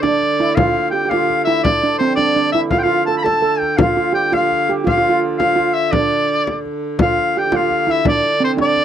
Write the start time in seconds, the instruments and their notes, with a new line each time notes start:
Already playing: hurdy-gurdy D3
0.02 steel pan D4, shawm D5, frame drum
0.21 frame drum
0.40 steel pan E4, frame drum
0.55 steel pan F4, shawm F5, frame drum
0.91 steel pan G4, shawm G5
1.05 steel pan G4, shawm F5
1.11 steel pan F4, frame drum
1.30 frame drum
1.45 steel pan E4, shawm E5, frame drum
1.63 steel pan D4, shawm D5, frame drum
1.83 steel pan D4
1.98 steel pan C4, shawm C5
2.15 steel pan D4, shawm D5, frame drum
2.36 steel pan D4, frame drum
2.52 steel pan E4, shawm E5, frame drum
2.71 hurdy-gurdy D3, steel pan F4, shawm F5, frame drum
2.79 shawm G5
2.83 steel pan F4, shawm F5
2.89 frame drum
3.06 steel pan A4, shawm A5
3.17 shawm B5
3.23 steel pan A4, shawm A5, frame drum
3.42 steel pan A4, frame drum
3.59 shawm G5, frame drum
3.77 steel pan F4, shawm F5, frame drum
3.97 steel pan F4, frame drum
4.13 steel pan G4, shawm G5
4.32 steel pan F4, shawm F5, frame drum
4.52 frame drum
4.70 steel pan G4, frame drum
4.84 steel pan F4, shawm F5, frame drum
4.98 steel pan F4
5.09 steel pan F4
5.38 steel pan F4, shawm F5, frame drum
5.56 steel pan F4, frame drum
5.74 shawm E5
5.91 steel pan D4, shawm D5, frame drum
6.47 frame drum
6.65 frame drum
6.98 hurdy-gurdy D3, steel pan F4, frame drum
7.02 shawm F5
7.18 frame drum
7.37 steel pan G4, shawm G5
7.45 steel pan G4
7.52 steel pan F4, shawm F5, frame drum
7.70 frame drum
7.87 steel pan E4, frame drum
7.91 shawm E5
8.05 steel pan D4, shawm D5, frame drum
8.23 frame drum
8.40 steel pan C4, shawm C5
8.57 steel pan D4, frame drum
8.62 shawm D5
8.76 frame drum